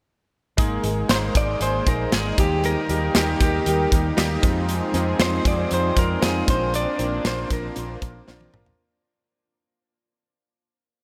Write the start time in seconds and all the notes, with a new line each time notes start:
0.57 G#1 G#3 A#3 D#4 G#4, kick, closed hi-hat
0.83 G#1 G#3 A#3 D#4 G#4, closed hi-hat
1.09 G#1 G#3 A#3 D#4 G#4 C5, snare, closed hi-hat
1.35 G#1 G#3 A#3 D#4 G#4 D5, kick, closed hi-hat
1.60 G#1 G#3 A#3 D#4 G#4 C5, closed hi-hat
1.86 A#1 G#3 A#3 D#4 G#4 A#4, kick, closed hi-hat
2.12 G#1 G#3 A#3 D#4 G#4, snare, closed hi-hat
2.38 D#2 D#3 G3 A#3 D#4 G4 A#4, kick, closed hi-hat
2.64 A#4, closed hi-hat
2.89 D#2 G3 A#3 D#4 G4, closed hi-hat
3.15 D#2 G3 A#3 D#4 G4, snare, closed hi-hat
3.40 D#2 G3 A#3 D#4 G4, kick, closed hi-hat
3.66 D#2 G3 A#3 D#4 G4, closed hi-hat
3.92 D#2 G3 A#3 D#4 G4, kick, closed hi-hat
4.17 D#2 G3 A#3 D#4 G4, snare, closed hi-hat
4.42 F2 F3 G#3 C4 D#4 F4 G#4, kick, closed hi-hat
4.69 closed hi-hat
4.93 F2 G#3 C4 D#4 F4, closed hi-hat
5.19 F2 G#3 C4 D#4 F4 C5, snare, closed hi-hat
5.45 F2 G#3 C4 D#4 F4 D5, kick, closed hi-hat
5.70 F2 G#3 C4 D#4 F4 C5, closed hi-hat
5.95 F2 G#3 C4 D#4 F4 A#4, kick, closed hi-hat
6.21 F2 G#3 C4 D#4 F4 G#4, snare, closed hi-hat
6.47 A#1 A#3 C4 D4 D#4 C5, kick, closed hi-hat
6.54 F4
6.74 D5, closed hi-hat
6.98 A#1 A#3 C4 D4 F4, closed hi-hat
7.23 A#1 A#3 C4 D4 F4 C5, snare, closed hi-hat
7.49 A#1 A#3 C4 D4 F4 A#4, kick, closed hi-hat
7.75 A#1 A#3 C4 D4 F4, closed hi-hat
8.01 A#1 A#3 C4 D4 F4, kick, closed hi-hat
8.27 A#1 A#3 C4 D4 F4, snare
8.41 high tom
8.52 A#1 A#3 C4 D4 F4, mid tom
8.66 floor tom